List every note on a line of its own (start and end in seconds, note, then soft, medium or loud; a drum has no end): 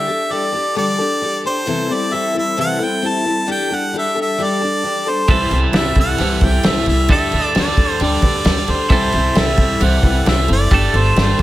0.00 1.66 D4 medium
0.00 1.65 G4 medium
0.00 8.86 A4 medium
0.00 0.33 E5 loud
0.07 0.30 D4 soft
0.07 0.31 G4 medium
0.07 0.30 A4 medium
0.30 0.53 G3 medium
0.30 0.54 D4 medium
0.30 0.53 G4 medium
0.30 0.51 A4 medium
0.30 0.77 D5 medium
0.52 0.75 D4 soft
0.52 0.75 G4 soft
0.52 0.76 A4 medium
0.75 0.98 D3 medium
0.75 0.99 G3 medium
0.75 0.99 D4 medium
0.75 0.98 G4 medium
0.75 0.97 A4 medium
0.75 1.41 D5 loud
0.98 1.21 D4 soft
0.98 1.22 G4 medium
0.98 1.21 A4 medium
1.21 1.44 G3 medium
1.21 1.45 D4 medium
1.21 1.44 G4 medium
1.21 1.43 A4 medium
1.44 1.67 D4 soft
1.44 1.67 G4 medium
1.44 1.67 A4 medium
1.44 1.95 C5 loud
1.65 1.89 C3 medium
1.65 1.90 E3 medium
1.65 1.90 G3 medium
1.65 3.45 C4 medium
1.65 1.89 C4 medium
1.65 3.46 E4 medium
1.65 1.88 E4 medium
1.65 1.87 A4 medium
1.88 2.10 G3 medium
1.88 2.11 C4 medium
1.88 2.12 E4 medium
1.88 2.12 A4 medium
1.94 2.15 D5 loud
2.11 2.34 G3 medium
2.11 2.34 C4 medium
2.11 2.34 E4 medium
2.11 2.32 A4 medium
2.11 2.35 E5 loud
2.34 2.57 G3 soft
2.34 2.56 C4 soft
2.34 2.57 E4 medium
2.34 2.57 A4 medium
2.38 2.58 E5 loud
2.57 2.80 C3 medium
2.57 2.80 E3 medium
2.57 2.80 G3 medium
2.57 2.80 C4 medium
2.57 2.79 E4 medium
2.57 2.78 A4 medium
2.57 2.85 F#5 loud
2.79 3.00 G3 soft
2.79 3.01 C4 soft
2.79 3.02 E4 medium
2.79 3.02 A4 medium
2.84 3.09 G5 loud
3.02 3.25 G3 medium
3.02 3.25 C4 medium
3.02 3.25 E4 medium
3.02 3.24 A4 medium
3.07 3.50 A5 loud
3.25 3.45 G3 soft
3.25 3.47 C4 soft
3.25 3.48 E4 soft
3.25 3.48 A4 medium
3.47 3.70 G3 medium
3.47 5.27 G3 medium
3.47 5.26 D4 medium
3.47 3.71 D4 medium
3.47 3.70 G4 medium
3.47 3.69 A4 medium
3.52 3.76 G5 loud
3.70 3.93 D4 soft
3.70 3.94 G4 soft
3.70 3.93 A4 medium
3.75 3.95 F#5 loud
3.93 4.16 G3 medium
3.93 4.16 D4 medium
3.93 4.15 G4 medium
3.93 4.14 A4 medium
3.99 4.17 E5 medium
4.15 4.37 D4 soft
4.15 4.39 G4 medium
4.15 4.38 A4 medium
4.21 4.44 E5 medium
4.38 4.61 G3 medium
4.38 4.61 D4 medium
4.38 4.62 G4 medium
4.38 4.60 A4 medium
4.43 5.10 D5 loud
4.61 4.83 D4 soft
4.61 4.84 G4 soft
4.61 4.84 A4 medium
4.83 5.06 G3 medium
4.83 5.07 D4 medium
4.83 5.06 G4 medium
4.83 5.05 A4 medium
5.06 5.30 D4 soft
5.06 5.30 G4 soft
5.06 5.29 A4 medium
5.06 5.60 C5 loud
5.27 5.48 C2 loud
5.27 5.52 C3 medium
5.27 5.52 E3 medium
5.27 5.52 G3 medium
5.27 7.07 C4 medium
5.27 5.52 C4 medium
5.27 7.07 E4 medium
5.27 5.61 E4 medium
5.27 5.61 G4 medium
5.27 5.61 A4 medium
5.27 5.61 C5 loud
5.27 kick loud
5.27 crash medium
5.31 5.51 E4 medium
5.31 5.50 A4 medium
5.51 5.71 C2 medium
5.51 5.73 G3 soft
5.51 5.74 C4 medium
5.51 5.75 E4 medium
5.51 5.74 A4 medium
5.51 crash medium
5.72 5.93 C2 medium
5.72 5.96 G3 medium
5.72 5.97 C4 medium
5.72 6.05 E4 medium
5.72 5.97 E4 medium
5.72 6.05 G4 medium
5.72 6.05 A4 medium
5.72 6.05 C5 medium
5.72 snare loud
5.72 crash medium
5.76 5.95 A4 medium
5.76 5.96 E5 medium
5.95 6.16 C2 loud
5.95 6.20 C4 soft
5.95 6.20 E4 medium
5.95 6.19 A4 medium
5.95 kick medium
5.95 crash medium
6.00 6.19 G3 soft
6.00 6.47 F#5 loud
6.18 6.39 C2 medium
6.18 6.42 C3 medium
6.18 6.42 E3 medium
6.18 6.42 G3 medium
6.18 6.42 C4 medium
6.18 6.34 E4 medium
6.18 6.41 E4 medium
6.18 6.34 G4 medium
6.18 6.34 A4 medium
6.18 6.40 A4 medium
6.18 6.35 C5 medium
6.18 crash medium
6.41 6.61 C2 medium
6.41 6.63 G3 soft
6.41 6.65 C4 soft
6.41 6.57 E4 medium
6.41 6.65 E4 medium
6.41 6.57 G4 medium
6.41 6.64 A4 medium
6.41 6.58 A4 medium
6.41 6.57 C5 medium
6.41 kick medium
6.41 crash medium
6.45 6.68 G5 loud
6.63 6.84 C2 medium
6.63 6.87 G3 medium
6.63 6.88 C4 medium
6.63 6.96 E4 medium
6.63 6.87 E4 medium
6.63 6.96 G4 medium
6.63 6.96 A4 medium
6.63 6.86 A4 medium
6.63 6.96 C5 medium
6.63 6.88 E5 loud
6.63 snare loud
6.63 crash medium
6.86 7.06 C2 medium
6.86 7.11 C4 medium
6.86 7.10 E4 soft
6.86 7.10 A4 medium
6.86 7.09 E5 loud
6.86 crash medium
6.90 7.09 G3 soft
7.08 7.29 D2 loud
7.08 7.32 D3 medium
7.08 7.33 G3 medium
7.08 8.88 D4 medium
7.08 7.42 D4 loud
7.08 7.33 D4 medium
7.08 8.88 G4 medium
7.08 7.41 G4 medium
7.08 7.32 G4 medium
7.08 7.42 A4 medium
7.08 7.31 A4 medium
7.08 7.42 D5 loud
7.08 7.53 E5 medium
7.08 kick loud
7.08 crash medium
7.32 7.52 D2 medium
7.32 7.55 D4 soft
7.32 7.55 G4 medium
7.32 7.55 A4 medium
7.32 crash medium
7.55 7.75 D2 medium
7.55 7.78 G3 medium
7.55 7.87 D4 medium
7.55 7.78 D4 medium
7.55 7.87 G4 medium
7.55 7.78 G4 medium
7.55 7.87 A4 medium
7.55 7.77 A4 medium
7.55 7.87 D5 medium
7.55 7.98 D5 medium
7.55 snare loud
7.55 crash medium
7.77 7.97 D2 medium
7.77 8.00 D4 soft
7.77 8.00 G4 soft
7.77 8.00 A4 medium
7.77 kick medium
7.77 crash medium
8.00 8.20 D2 loud
8.00 8.23 D3 medium
8.00 8.23 G3 medium
8.00 8.23 D4 medium
8.00 8.16 D4 medium
8.00 8.16 G4 medium
8.00 8.22 G4 medium
8.00 8.16 A4 medium
8.00 8.21 A4 medium
8.00 8.16 D5 medium
8.00 8.72 D5 loud
8.00 crash medium
8.22 8.42 D2 medium
8.22 8.39 D4 medium
8.22 8.45 D4 soft
8.22 8.39 G4 medium
8.22 8.46 G4 medium
8.22 8.45 A4 medium
8.22 8.38 A4 medium
8.22 8.39 B4 medium
8.22 kick medium
8.22 crash medium
8.45 8.65 D2 medium
8.45 8.68 G3 medium
8.45 8.68 D4 medium
8.45 8.77 D4 medium
8.45 8.77 G4 medium
8.45 8.68 G4 medium
8.45 8.77 A4 medium
8.45 8.66 A4 medium
8.45 8.77 D5 medium
8.45 snare loud
8.45 crash medium
8.68 8.88 D2 medium
8.68 8.91 D4 soft
8.68 8.91 G4 medium
8.68 8.90 A4 medium
8.68 9.40 C5 loud
8.68 crash medium
8.89 9.10 C2 loud
8.89 9.13 C3 medium
8.89 9.13 E3 medium
8.89 9.14 G3 medium
8.89 10.70 C4 medium
8.89 9.13 C4 medium
8.89 10.69 E4 medium
8.89 9.22 E4 loud
8.89 9.13 E4 medium
8.89 9.22 G4 medium
8.89 11.42 A4 medium
8.89 9.22 A4 medium
8.89 9.11 A4 medium
8.89 9.22 C5 loud
8.89 kick loud
8.89 crash medium
9.12 9.33 C2 medium
9.12 9.34 G3 soft
9.12 9.35 C4 medium
9.12 9.36 E4 medium
9.12 9.35 A4 medium
9.12 crash medium
9.35 9.55 C2 loud
9.35 9.58 G3 medium
9.35 9.58 C4 medium
9.35 9.67 E4 medium
9.35 9.58 E4 medium
9.35 9.67 G4 medium
9.35 9.68 A4 medium
9.35 9.57 A4 medium
9.35 9.67 C5 medium
9.35 9.85 E5 medium
9.35 snare loud
9.35 crash medium
9.57 9.78 C2 medium
9.57 9.79 G3 soft
9.57 9.80 C4 soft
9.57 9.80 E4 medium
9.57 9.81 A4 medium
9.57 kick medium
9.57 crash medium
9.80 10.00 C2 loud
9.80 10.03 C3 medium
9.80 10.03 E3 medium
9.80 10.03 G3 medium
9.80 10.03 C4 medium
9.80 10.02 E4 medium
9.80 9.97 E4 medium
9.80 9.97 G4 medium
9.80 9.97 A4 medium
9.80 10.01 A4 medium
9.80 9.97 C5 medium
9.80 10.27 F#5 loud
9.80 crash medium
10.02 10.23 C2 loud
10.02 10.24 G3 soft
10.02 10.25 C4 soft
10.02 10.26 E4 medium
10.02 10.20 E4 medium
10.02 10.20 G4 medium
10.02 10.25 A4 medium
10.02 10.20 A4 medium
10.02 10.19 B4 medium
10.02 kick medium
10.02 crash medium
10.26 10.46 C2 medium
10.26 10.49 G3 medium
10.26 10.48 C4 medium
10.26 10.58 E4 medium
10.26 10.47 E4 medium
10.26 10.58 G4 medium
10.26 10.58 A4 medium
10.26 10.46 A4 medium
10.26 10.58 C5 medium
10.26 10.48 E5 loud
10.26 snare loud
10.26 crash medium
10.48 10.69 F#1 medium
10.48 10.69 G3 soft
10.48 10.71 C4 medium
10.48 10.71 E4 medium
10.48 10.71 A4 medium
10.48 crash medium
10.52 10.98 D5 loud
10.70 10.91 G1 loud
10.70 10.94 G3 medium
10.70 11.42 G3 medium
10.70 11.42 A3 medium
10.70 10.94 D4 medium
10.70 11.04 D4 loud
10.70 11.42 D4 medium
10.70 10.94 G4 medium
10.70 11.04 G4 medium
10.70 10.92 A4 medium
10.70 11.04 A4 medium
10.70 11.03 D5 loud
10.70 kick loud
10.70 crash medium
10.94 11.14 G1 medium
10.94 11.16 D4 soft
10.94 11.16 G4 medium
10.94 11.17 A4 medium
10.94 11.18 C5 medium
10.94 crash medium
11.16 11.36 G1 medium
11.16 11.39 G3 medium
11.16 11.40 D4 medium
11.16 11.42 D4 medium
11.16 11.42 G4 medium
11.16 11.38 G4 medium
11.16 11.42 A4 medium
11.16 11.36 A4 medium
11.16 11.42 C5 medium
11.16 11.42 D5 medium
11.16 snare loud
11.16 crash medium
11.38 11.42 G1 medium
11.38 11.42 G4 soft
11.38 11.42 A4 medium
11.38 kick medium
11.38 crash medium